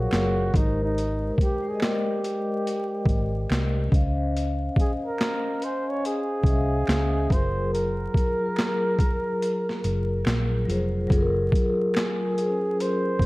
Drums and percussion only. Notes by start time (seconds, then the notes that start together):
0.11 finger snap, snare, clap, closed hi-hat
0.54 kick, closed hi-hat
0.98 closed hi-hat
1.38 kick, closed hi-hat
1.80 finger snap, snare, clap, closed hi-hat
2.24 closed hi-hat
2.67 closed hi-hat
3.05 kick, closed hi-hat
3.50 finger snap, snare, clap, closed hi-hat
3.92 kick, closed hi-hat
4.37 closed hi-hat
4.76 kick, closed hi-hat
5.18 finger snap, snare, clap, closed hi-hat
5.62 closed hi-hat
6.05 closed hi-hat
6.43 kick, closed hi-hat
6.87 finger snap, snare, clap, closed hi-hat
7.30 kick, closed hi-hat
7.75 closed hi-hat
8.14 kick, closed hi-hat
8.56 finger snap, snare, clap, closed hi-hat
8.99 kick, closed hi-hat
9.42 closed hi-hat
9.69 snare
9.84 closed hi-hat
10.25 finger snap, snare, clap, closed hi-hat
10.70 closed hi-hat
11.10 kick, closed hi-hat
11.52 kick, closed hi-hat
11.94 finger snap, snare, clap, closed hi-hat
12.38 closed hi-hat
12.80 closed hi-hat
13.19 kick, closed hi-hat